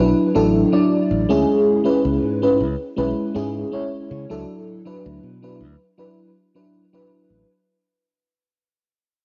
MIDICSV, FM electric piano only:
0, 0, Header, 1, 2, 480
1, 0, Start_track
1, 0, Tempo, 750000
1, 949, Time_signature, 4, 2, 24, 8
1, 5919, End_track
2, 0, Start_track
2, 0, Title_t, "FM electric piano"
2, 0, Program_c, 0, 5
2, 0, Note_on_c, 0, 54, 75
2, 0, Note_on_c, 0, 62, 70
2, 0, Note_on_c, 0, 64, 68
2, 0, Note_on_c, 0, 71, 83
2, 199, Note_off_c, 0, 54, 0
2, 202, Note_off_c, 0, 62, 0
2, 202, Note_off_c, 0, 64, 0
2, 204, Note_off_c, 0, 71, 0
2, 220, Note_on_c, 0, 54, 80
2, 223, Note_on_c, 0, 62, 73
2, 227, Note_on_c, 0, 64, 76
2, 227, Note_on_c, 0, 69, 91
2, 438, Note_off_c, 0, 54, 0
2, 439, Note_off_c, 0, 62, 0
2, 441, Note_off_c, 0, 64, 0
2, 441, Note_off_c, 0, 69, 0
2, 461, Note_on_c, 0, 54, 77
2, 464, Note_on_c, 0, 62, 74
2, 466, Note_on_c, 0, 64, 72
2, 469, Note_on_c, 0, 74, 87
2, 802, Note_off_c, 0, 54, 0
2, 803, Note_off_c, 0, 62, 0
2, 804, Note_off_c, 0, 64, 0
2, 806, Note_off_c, 0, 74, 0
2, 824, Note_on_c, 0, 56, 85
2, 828, Note_on_c, 0, 61, 78
2, 832, Note_on_c, 0, 64, 77
2, 834, Note_on_c, 0, 68, 94
2, 1156, Note_off_c, 0, 56, 0
2, 1158, Note_off_c, 0, 61, 0
2, 1160, Note_off_c, 0, 64, 0
2, 1161, Note_off_c, 0, 68, 0
2, 1178, Note_on_c, 0, 56, 77
2, 1182, Note_on_c, 0, 61, 67
2, 1186, Note_on_c, 0, 64, 70
2, 1189, Note_on_c, 0, 71, 86
2, 1520, Note_off_c, 0, 56, 0
2, 1522, Note_off_c, 0, 61, 0
2, 1524, Note_off_c, 0, 64, 0
2, 1526, Note_off_c, 0, 71, 0
2, 1550, Note_on_c, 0, 56, 74
2, 1552, Note_on_c, 0, 61, 67
2, 1555, Note_on_c, 0, 64, 67
2, 1557, Note_on_c, 0, 71, 82
2, 1671, Note_off_c, 0, 56, 0
2, 1672, Note_off_c, 0, 61, 0
2, 1673, Note_off_c, 0, 64, 0
2, 1674, Note_off_c, 0, 71, 0
2, 1898, Note_on_c, 0, 56, 77
2, 1902, Note_on_c, 0, 61, 67
2, 1905, Note_on_c, 0, 64, 70
2, 1908, Note_on_c, 0, 71, 83
2, 2116, Note_off_c, 0, 56, 0
2, 2118, Note_off_c, 0, 61, 0
2, 2120, Note_off_c, 0, 64, 0
2, 2122, Note_off_c, 0, 71, 0
2, 2140, Note_on_c, 0, 56, 80
2, 2143, Note_on_c, 0, 61, 71
2, 2146, Note_on_c, 0, 64, 71
2, 2150, Note_on_c, 0, 68, 88
2, 2358, Note_off_c, 0, 56, 0
2, 2359, Note_off_c, 0, 61, 0
2, 2360, Note_off_c, 0, 64, 0
2, 2362, Note_off_c, 0, 68, 0
2, 2379, Note_on_c, 0, 56, 76
2, 2382, Note_on_c, 0, 61, 70
2, 2385, Note_on_c, 0, 64, 72
2, 2390, Note_on_c, 0, 73, 83
2, 2721, Note_off_c, 0, 56, 0
2, 2722, Note_off_c, 0, 61, 0
2, 2724, Note_off_c, 0, 64, 0
2, 2726, Note_off_c, 0, 73, 0
2, 2748, Note_on_c, 0, 54, 85
2, 2752, Note_on_c, 0, 62, 77
2, 2755, Note_on_c, 0, 64, 75
2, 2758, Note_on_c, 0, 69, 93
2, 3078, Note_off_c, 0, 54, 0
2, 3080, Note_off_c, 0, 62, 0
2, 3081, Note_off_c, 0, 64, 0
2, 3083, Note_off_c, 0, 69, 0
2, 3105, Note_on_c, 0, 54, 74
2, 3107, Note_on_c, 0, 62, 67
2, 3110, Note_on_c, 0, 64, 67
2, 3115, Note_on_c, 0, 71, 82
2, 3443, Note_off_c, 0, 54, 0
2, 3445, Note_off_c, 0, 62, 0
2, 3446, Note_off_c, 0, 64, 0
2, 3449, Note_off_c, 0, 71, 0
2, 3470, Note_on_c, 0, 54, 71
2, 3473, Note_on_c, 0, 62, 66
2, 3476, Note_on_c, 0, 64, 66
2, 3481, Note_on_c, 0, 71, 80
2, 3591, Note_off_c, 0, 54, 0
2, 3592, Note_off_c, 0, 62, 0
2, 3594, Note_off_c, 0, 64, 0
2, 3596, Note_off_c, 0, 71, 0
2, 3825, Note_on_c, 0, 54, 73
2, 3828, Note_on_c, 0, 62, 66
2, 3830, Note_on_c, 0, 64, 68
2, 3835, Note_on_c, 0, 71, 82
2, 4040, Note_off_c, 0, 54, 0
2, 4041, Note_off_c, 0, 62, 0
2, 4042, Note_off_c, 0, 64, 0
2, 4045, Note_off_c, 0, 71, 0
2, 4189, Note_on_c, 0, 54, 69
2, 4195, Note_on_c, 0, 62, 64
2, 4197, Note_on_c, 0, 64, 62
2, 4199, Note_on_c, 0, 71, 74
2, 4390, Note_off_c, 0, 54, 0
2, 4393, Note_off_c, 0, 62, 0
2, 4394, Note_off_c, 0, 64, 0
2, 4395, Note_off_c, 0, 71, 0
2, 4435, Note_on_c, 0, 54, 81
2, 4438, Note_on_c, 0, 62, 74
2, 4441, Note_on_c, 0, 64, 72
2, 4445, Note_on_c, 0, 71, 89
2, 4775, Note_off_c, 0, 54, 0
2, 4777, Note_off_c, 0, 62, 0
2, 4778, Note_off_c, 0, 64, 0
2, 4780, Note_off_c, 0, 71, 0
2, 5919, End_track
0, 0, End_of_file